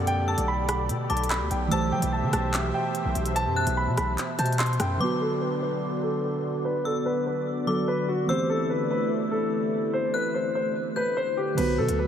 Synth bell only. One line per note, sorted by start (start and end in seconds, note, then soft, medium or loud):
0.28 0.47 E6 medium
1.10 1.68 D6 medium
1.72 3.32 E6 loud
3.56 3.76 F#6 medium
4.39 4.97 G6 medium
5.01 6.61 D6 loud
6.85 7.05 E6 medium
7.67 8.25 D6 medium
8.29 9.89 E6 loud
10.14 10.33 F#6 medium
10.96 11.54 G6 medium